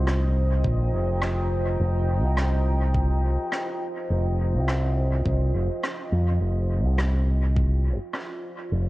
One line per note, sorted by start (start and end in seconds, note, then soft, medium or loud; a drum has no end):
0.00 0.62 C2 medium
0.00 6.39 F4 medium
0.00 6.41 C5 medium
0.00 6.42 D#5 medium
0.00 7.54 G5 medium
0.00 6.41 A#5 medium
0.07 cross-stick medium
0.64 0.90 A#1 medium
0.64 kick loud
0.93 1.77 F1 medium
1.22 cross-stick medium
1.80 2.23 F1 medium
2.23 3.36 C2 medium
2.37 cross-stick medium
2.95 kick loud
3.52 cross-stick medium
4.10 4.56 F1 medium
4.54 5.23 C2 medium
4.68 cross-stick medium
5.25 5.51 C2 medium
5.25 kick loud
5.54 5.68 F1 medium
5.83 cross-stick medium
6.12 6.38 F2 medium
6.41 6.85 F1 medium
6.41 8.89 F4 medium
6.85 7.97 C2 medium
6.98 cross-stick medium
7.16 8.89 C5 medium
7.56 kick loud
8.02 8.89 D5 medium
8.13 cross-stick medium
8.72 8.89 F1 medium